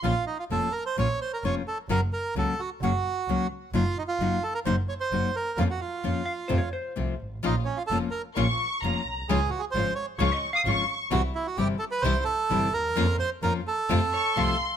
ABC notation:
X:1
M:4/4
L:1/16
Q:1/4=130
K:Bbm
V:1 name="Violin section"
z16 | z16 | z16 | z16 |
z8 d'4 b3 z | z8 d'3 e' d'3 z | z16 | z8 z2 d'2 c'4 |]
V:2 name="Hollow-body jazz guitar"
z16 | z16 | z16 | z6 f2 c d c4- c z |
z16 | z8 d e2 f4 z | z16 | z8 z2 d2 f4 |]
V:3 name="Bandoneon"
F2 E F =A2 B c d2 c B d2 A2 | B2 B2 =A2 G2 G6 z2 | F2 E F3 =A B c2 d c3 B2 | F G F8 z6 |
E2 D F =A2 B2 z8 | A2 G A c2 d2 z8 | G2 =E G =G2 =A _c =c2 A4 B2- | B2 c2 B2 =A8 z2 |]
V:4 name="String section"
z16 | z16 | z16 | z16 |
[B,DF]2 z2 [B,DF]2 z2 [B,DF]2 z2 [B,DF]2 z2 | [A,DF]2 z2 [A,DF]2 z2 [A,DF]2 z2 [A,DF]2 z2 | [=G,C=E]2 z2 [G,CE]2 z2 [G,CE]2 z2 [G,CE]2 z2 | [B,DF]2 z2 [B,DF]2 z2 [=A,CF]2 z2 [A,CF]2 z2 |]
V:5 name="Nylon-string guitar"
[F,B,DF]2 z2 [F,B,DF]2 z2 [F,B,DF]2 z2 [F,B,DF]2 z2 | [D,G,B,DG]2 z2 [D,G,B,DG]2 z2 [D,G,B,DG]2 z2 [D,G,B,DG]2 z2 | [G,B,EG]2 z2 [G,B,EG]2 z2 [G,B,EG]2 z2 [G,B,EG]2 z2 | [F,B,DF]2 z2 [F,B,DF]2 z2 [C,F,=A,CF]2 z2 [C,F,A,CF]2 z2 |
[F,B,DF]2 z2 [F,B,DF]2 z2 [F,B,DF]2 z2 [F,B,DF]2 z2 | [D,F,A,DF]2 z2 [D,F,A,DF]2 z2 [D,F,A,DF]2 z2 [D,F,A,DF]2 z2 | [C,=E,=G,C=E]2 z2 [C,E,G,CE]2 z2 [C,E,G,CE]2 z2 [C,E,G,CE]2 z2 | [F,B,DF]2 z2 [F,B,DF]2 z2 [C,F,=A,CF]2 z2 [C,F,A,CF]2 z2 |]
V:6 name="Double bass" clef=bass
B,,,2 z2 F,,,2 z2 B,,,2 z2 F,,,2 z2 | G,,,2 z2 D,,2 z2 G,,,2 z2 D,,2 z2 | G,,,2 z2 G,,,2 z2 G,,,2 z2 G,,,2 z2 | F,,2 z2 F,,2 z2 F,,2 z2 C,,2 A,,,2 |
B,,,2 z2 F,,,2 z2 B,,,2 z2 F,,,2 _C,,2 | D,,2 z2 A,,,2 z2 D,,2 z2 A,,,2 z2 | C,,2 z2 =G,,,2 z2 C,,2 z2 G,,,2 E,,2 | F,,2 z2 F,,2 z2 F,,2 z2 C,,2 z2 |]